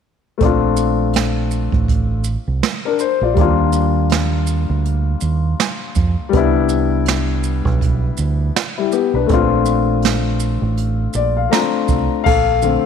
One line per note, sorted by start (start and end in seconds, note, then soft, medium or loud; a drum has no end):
0.38 1.70 A#1 medium
0.38 2.21 A3 medium
0.38 2.22 C4 medium
0.38 kick medium
0.38 closed hi-hat medium
0.42 2.23 D4 medium
0.42 2.24 F4 medium
0.77 shaker soft
1.13 snare medium
1.13 closed hi-hat medium
1.51 shaker soft
1.72 2.36 A1 medium
1.72 kick medium
1.88 kick medium
1.88 closed hi-hat medium
2.24 shaker soft
2.48 2.60 C2 medium
2.63 snare loud
2.63 closed hi-hat medium
2.85 3.00 D4 soft
2.85 2.99 A#4 medium
2.99 3.21 C5 medium
2.99 shaker soft
3.21 3.34 A#1 medium
3.21 3.40 F4 soft
3.21 3.57 D5 medium
3.34 4.66 D#2 medium
3.34 6.28 G3 medium
3.34 6.29 A#3 medium
3.34 kick loud
3.34 closed hi-hat medium
3.39 6.30 D4 medium
3.39 6.31 F4 medium
3.73 shaker soft
4.09 snare medium
4.09 closed hi-hat medium
4.47 shaker soft
4.70 5.14 D2 medium
4.85 closed hi-hat medium
5.21 5.53 D#2 medium
5.21 shaker soft
5.60 snare loud
5.60 closed hi-hat medium
5.95 6.15 F2 medium
5.95 kick medium
5.95 closed hi-hat soft
5.95 shaker soft
6.29 8.49 G3 medium
6.29 8.51 B3 medium
6.29 closed hi-hat medium
6.33 7.62 C2 medium
6.33 8.52 D4 medium
6.33 8.53 E4 medium
6.33 kick loud
6.69 shaker soft
7.06 snare medium
7.06 closed hi-hat medium
7.43 shaker medium
7.65 8.10 B1 medium
7.65 kick medium
7.81 kick medium
7.81 closed hi-hat medium
8.17 8.50 D2 medium
8.17 shaker soft
8.56 snare loud
8.56 closed hi-hat medium
8.78 8.92 G3 soft
8.78 8.92 E4 medium
8.92 9.13 B3 medium
8.92 9.13 G4 medium
8.92 shaker soft
9.14 9.27 B1 medium
9.14 9.30 D4 soft
9.14 9.49 B4 medium
9.26 10.58 A#1 medium
9.26 11.46 A3 medium
9.26 11.47 C4 medium
9.26 kick loud
9.26 closed hi-hat medium
9.31 11.49 D4 medium
9.31 11.50 F4 medium
9.66 shaker soft
10.02 snare medium
10.02 closed hi-hat medium
10.40 shaker medium
10.62 11.06 A1 medium
10.77 closed hi-hat medium
11.13 11.46 A#1 medium
11.13 11.35 D5 medium
11.13 shaker soft
11.37 11.51 F5 medium
11.50 12.25 A3 medium
11.50 12.25 C4 soft
11.50 12.26 D4 soft
11.50 12.26 F4 medium
11.50 12.22 A#5 medium
11.50 snare loud
11.50 closed hi-hat medium
11.88 12.07 C2 medium
11.88 kick medium
11.88 closed hi-hat soft
11.88 shaker soft
12.24 12.76 A#1 medium
12.24 12.86 A4 medium
12.24 12.86 F5 medium
12.24 kick loud
12.24 crash medium
12.62 12.86 D3 soft
12.62 12.86 A3 soft
12.62 12.86 C4 medium
12.62 shaker soft